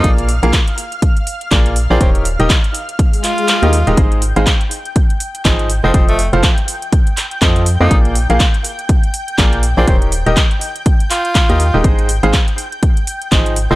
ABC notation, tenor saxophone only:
X:1
M:4/4
L:1/16
Q:"Swing 16ths" 1/4=122
K:Ab
V:1 name="Tenor saxophone"
z12 z3 C | C z8 z F6 | z12 z3 C | C =A,2 z12 E |
z12 z3 C | C z8 z F6 | z12 z3 C |]